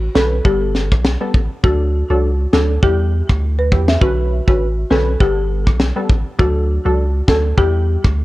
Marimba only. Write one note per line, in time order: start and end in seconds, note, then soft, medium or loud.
0.15 0.30 A4 medium
0.45 0.89 G4 loud
1.64 1.89 F#4 loud
2.10 2.21 F#4 medium
2.53 2.67 A4 medium
2.83 3.26 G4 loud
3.59 3.70 B4 medium
3.88 4.00 E5 medium
4.01 4.27 F#4 medium
4.48 4.59 F#4 medium
4.90 5.05 A4 medium
5.20 5.64 G4 loud
6.39 6.64 F#4 loud
6.86 6.97 F#4 medium
7.28 7.42 A4 medium
7.58 8.02 G4 loud